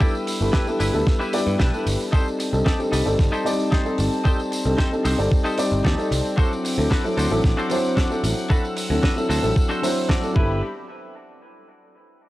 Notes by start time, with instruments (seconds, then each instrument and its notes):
Already playing: string section B4 G5 E6
0.00 grand piano G3 B3 D4 E4 A4, clean electric guitar D4 E4 G4 D5, kick, tambourine
0.15 tambourine
0.27 muted clean electric guitar stroke, open hi-hat, tambourine
0.41 picked electric bass G1, grand piano G3 B3 D4 E4 A4, tambourine
0.53 clean electric guitar D4 E4 G4 B4, kick, snare, tambourine
0.67 grand piano G3 B3 D4 E4 A4, tambourine
0.80 picked electric bass G1, clean electric guitar D4 E4 G4 B4, open hi-hat, tambourine
0.94 picked electric bass D2, grand piano G3 B3 D4 E4 A4, tambourine
1.06 muted clean electric guitar stroke, kick, snare, tambourine
1.20 clean electric guitar D4 E4 G4 B4, tambourine
1.33 grand piano G3 B3 D4 E4 D5, open hi-hat, tambourine
1.47 picked electric bass G2, tambourine
1.59 picked electric bass B1, clean electric guitar D4 E4 G4 B4, kick, snare, tambourine
1.73 grand piano G3 B3 D4 E4 A4, tambourine
1.86 picked electric bass G1, open hi-hat, tambourine
2.00 tambourine
2.12 grand piano G3 C4 D#4 A4 D5, string section C4 A5, clean electric guitar D#4 G4 A4 C5, kick, tambourine
2.28 tambourine
2.39 muted clean electric guitar stroke, open hi-hat, tambourine
2.53 picked electric bass C2, grand piano G3 C4 D4 D#4 A4, tambourine
2.66 clean electric guitar D#4 G4 A4 D5, kick, snare, tambourine
2.79 grand piano G3 C4 D4 D#4 A4, tambourine
2.92 picked electric bass C2, clean electric guitar D#4 G4 A4 B4, open hi-hat, tambourine
3.05 picked electric bass G1, grand piano G3 C4 D#4 A4 D5, tambourine
3.19 picked electric bass G1, muted clean electric guitar stroke, kick, snare, tambourine
3.32 clean electric guitar D#4 G4 A4 C5, tambourine
3.45 grand piano G3 C4 D#4 D5, open hi-hat, tambourine
3.59 tambourine
3.71 clean electric guitar D#4 G4 A4 C5, kick, snare, tambourine
3.85 grand piano G3 C4 D#4 A4 D5, tambourine
3.98 picked electric bass G1, open hi-hat, tambourine
4.12 tambourine
4.25 grand piano G3 C4 D#4 A4 D5, clean electric guitar D#4 G4 A4 C5, kick, tambourine
4.40 tambourine
4.52 muted clean electric guitar stroke, open hi-hat, tambourine
4.65 picked electric bass C2, grand piano G3 C4 D4 D#4 A4, tambourine
4.78 clean electric guitar D#4 G4 A4 C5, kick, snare, tambourine
4.91 grand piano G3 C4 D4 D#4 A4, tambourine
5.04 picked electric bass C2, clean electric guitar D#4 G4 A4 C5, open hi-hat, tambourine
5.18 picked electric bass G1, grand piano G3 C4 D#4 A4 D5, tambourine
5.31 muted clean electric guitar stroke, kick, tambourine
5.44 clean electric guitar D#4 G4 A4 C5, tambourine
5.58 grand piano G3 C4 D#4 D5, open hi-hat, tambourine
5.72 picked electric bass G1, tambourine
5.84 picked electric bass D#2, clean electric guitar D#4 G4 A4 D5, kick, snare, tambourine
5.98 grand piano G3 C4 D#4 A4 D5, tambourine
6.11 picked electric bass C2, open hi-hat, tambourine
6.26 tambourine
6.37 grand piano F#3 C4 D4 E4 A4, clean electric guitar D4 F#4 A4 C5, string section F#5 D6, kick, tambourine
6.53 tambourine
6.64 muted clean electric guitar stroke, open hi-hat, tambourine
6.77 picked electric bass D2, grand piano F#3 C4 D4 E4 A4, tambourine
6.91 clean electric guitar D4 F#4 A4 B4, kick, snare, tambourine
7.04 grand piano F#3 C4 D4 E4 A4, tambourine
7.17 picked electric bass D2, clean electric guitar D4 F#4 A4 C5, open hi-hat, tambourine
7.30 picked electric bass A1, grand piano F#3 C4 D4 E4 A4, tambourine
7.44 picked electric bass A1, muted clean electric guitar stroke, kick, snare, tambourine
7.57 clean electric guitar D4 F#4 A4 C5, tambourine
7.70 grand piano F#3 C4 D4 E4 C5, open hi-hat, tambourine
7.85 tambourine
7.96 clean electric guitar D4 F#4 A4 D5, kick, snare, tambourine
8.10 grand piano F#3 C4 D4 E4 A4, tambourine
8.24 picked electric bass A1, open hi-hat, tambourine
8.37 tambourine
8.50 grand piano F#3 C4 D4 E4 A4, clean electric guitar D4 F#4 A4 B4, string section E6, kick, tambourine
8.65 tambourine
8.76 muted clean electric guitar stroke, open hi-hat, tambourine
8.90 picked electric bass D2, grand piano F#3 C4 D4 E4 A4, tambourine
9.03 clean electric guitar D4 F#4 A4 B4, kick, snare, tambourine
9.16 grand piano F#3 C4 D4 E4 A4, tambourine
9.29 picked electric bass D2, clean electric guitar D4 F#4 A4 C5, open hi-hat, tambourine
9.43 picked electric bass A1, grand piano F#3 C4 D4 E4 A4, tambourine
9.56 muted clean electric guitar stroke, kick, tambourine
9.69 clean electric guitar D4 F#4 A4 C5, tambourine
9.82 grand piano F#3 C4 D4 E4 C5, open hi-hat, tambourine
9.98 tambourine
10.09 clean electric guitar D4 F#4 A4 D5, kick, snare, tambourine
10.22 grand piano F#3 C4 D4 E4 A4, tambourine
10.34 picked electric bass G1, grand piano G3 B3 D4 E4 A4, clean electric guitar E4 G4 B4, string section G4 E5 B5, kick